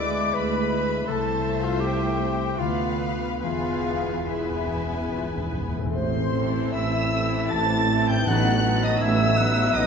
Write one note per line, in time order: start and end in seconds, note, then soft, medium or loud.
0.00 0.27 D2 medium
0.00 0.28 D2 medium
0.00 1.12 D3 medium
0.00 1.04 G#3 medium
0.00 1.11 G#3 soft
0.00 0.35 G#3 soft
0.00 1.12 B3 soft
0.00 1.04 E4 medium
0.00 0.71 E4 soft
0.00 0.35 B4 soft
0.00 1.12 B4 soft
0.00 0.36 D5 medium
0.00 0.36 E5 soft
0.00 0.35 D6 medium
0.00 0.36 D6 medium
0.34 1.00 D2 medium
0.34 1.00 D2 soft
0.34 0.71 G#3 medium
0.34 1.12 G#4 soft
0.34 1.07 B4 medium
0.34 0.71 B4 soft
0.34 0.72 E5 soft
0.34 1.08 B5 medium
0.34 1.09 B5 medium
0.72 1.08 G#3 soft
0.72 2.19 E4 soft
0.72 1.08 B4 soft
0.72 1.07 E5 soft
1.07 2.56 C2 medium
1.07 2.63 C3 medium
1.07 2.56 A3 medium
1.07 2.57 A3 medium
1.07 2.56 E4 medium
1.07 1.65 A4 medium
1.07 2.56 C5 medium
1.07 2.56 E5 medium
1.07 1.62 A5 medium
1.07 1.64 A5 medium
1.45 2.63 A3 soft
1.62 1.82 F4 medium
1.62 1.82 F5 medium
1.62 1.83 F5 medium
1.80 2.63 C4 soft
1.80 2.60 G4 medium
1.80 2.60 G5 medium
1.80 2.59 G5 medium
2.20 2.63 E4 soft
2.58 3.41 D2 medium
2.58 3.42 D2 soft
2.58 3.47 D3 soft
2.58 3.42 B3 soft
2.58 3.13 F4 medium
2.58 2.91 F4 soft
2.58 3.43 B4 soft
2.58 3.40 F5 medium
2.58 2.99 F5 soft
2.58 3.11 F5 medium
2.62 3.43 B3 soft
3.01 3.47 F4 soft
3.01 3.44 F4 soft
3.01 5.11 B4 soft
3.01 3.42 F5 soft
3.42 5.74 E1 soft
3.42 5.73 E2 medium
3.42 3.50 E2 soft
3.42 5.98 E3 soft
3.42 4.28 B3 soft
3.42 4.31 F4 medium
3.42 4.27 G#4 soft
3.42 4.27 B4 soft
3.42 4.26 F5 medium
3.42 4.27 F5 medium
3.42 4.27 G#5 soft
3.51 3.59 E2 soft
3.60 3.67 E2 soft
3.76 3.84 E2 soft
3.85 3.92 E2 soft
3.85 5.84 E4 soft
3.94 4.00 E2 soft
4.02 4.09 E2 soft
4.10 4.17 E2 soft
4.18 4.25 E2 soft
4.27 4.33 E2 soft
4.27 5.98 B3 soft
4.27 5.71 B3 soft
4.27 5.59 B3 soft
4.27 5.18 E4 soft
4.27 5.59 G#4 soft
4.27 5.71 B4 soft
4.27 5.53 E5 soft
4.27 5.71 G#5 soft
4.35 4.41 E2 soft
4.42 4.50 E2 soft
4.51 4.57 E2 soft
4.58 4.66 E2 soft
4.67 4.73 E2 soft
4.67 5.52 G#4 soft
4.74 4.81 E2 soft
4.82 4.88 E2 soft
4.89 4.97 E2 medium
4.98 5.05 E2 medium
5.06 5.12 E2 soft
5.12 5.21 E2 soft
5.12 5.98 B4 soft
5.17 5.27 F4 soft
5.22 5.29 E2 medium
5.22 5.36 E4 soft
5.30 5.36 E2 medium
5.35 5.45 E2 medium
5.35 5.46 D4 soft
5.45 5.52 E2 medium
5.45 5.54 E4 soft
5.53 5.60 E2 medium
5.53 5.97 G#4 soft
5.61 5.67 E2 medium
5.68 5.75 E2 medium
5.77 5.83 E2 medium
5.77 8.08 A2 soft
5.81 5.92 E2 medium
5.81 8.23 C4 soft
5.86 8.25 E4 soft
5.90 6.64 A1 medium
5.90 6.64 A2 medium
5.90 9.80 A4 soft
5.90 6.69 C5 medium
5.90 6.69 C6 medium
5.95 6.65 A1 medium
5.95 6.71 C4 medium
5.95 6.71 E4 medium
5.95 6.73 C5 medium
6.33 7.11 E3 soft
6.33 7.11 C4 soft
6.33 7.10 E4 soft
6.33 7.10 A4 soft
6.72 7.42 A1 medium
6.72 7.41 A2 medium
6.72 7.49 C4 medium
6.72 7.48 E4 medium
6.72 7.52 E5 medium
6.72 7.51 E5 medium
6.72 7.54 B5 medium
6.72 7.50 E6 medium
7.11 7.88 E3 soft
7.11 7.88 C4 soft
7.11 7.87 E4 soft
7.11 7.87 A4 soft
7.49 8.18 A1 medium
7.49 8.18 A2 medium
7.49 8.25 C4 medium
7.49 8.25 E4 medium
7.49 8.07 A5 medium
7.49 8.09 A5 medium
7.49 9.01 A5 medium
7.49 8.06 A6 medium
7.88 8.26 E3 soft
7.88 8.26 C4 soft
7.88 8.26 E4 medium
7.88 8.26 A4 soft
8.08 9.87 A2 medium
8.08 8.27 G5 medium
8.08 8.28 G6 medium
8.14 9.87 B3 soft
8.18 9.87 D#4 soft
8.23 8.91 A1 medium
8.23 9.33 A2 medium
8.23 8.92 A2 medium
8.23 9.74 D#4 medium
8.23 9.87 B4 soft
8.23 8.62 B4 medium
8.27 8.92 A1 medium
8.27 8.63 F#3 soft
8.27 8.63 B3 soft
8.27 9.71 B3 medium
8.27 8.62 D#4 medium
8.27 8.85 F#5 medium
8.27 8.83 F#5 medium
8.27 8.82 F#6 medium
8.63 9.35 F#3 medium
8.63 9.35 B3 medium
8.63 9.35 D#4 medium
8.63 9.35 B4 medium
8.83 9.01 D#5 medium
8.83 9.03 D#5 medium
8.83 9.01 D#6 medium
8.99 9.65 A1 medium
8.99 9.65 A2 medium
8.99 9.72 E5 medium
8.99 9.78 E5 medium
8.99 9.38 G#5 medium
8.99 9.73 E6 loud
9.36 9.87 F#3 medium
9.36 9.87 B3 medium
9.36 9.87 D#4 medium
9.36 9.87 B4 medium
9.36 9.72 F#5 medium
9.73 9.87 A1 medium
9.73 9.87 A2 medium
9.73 9.87 B3 medium
9.73 9.87 D#4 medium
9.73 9.87 D#5 medium
9.73 9.87 F#5 medium
9.73 9.87 D#6 loud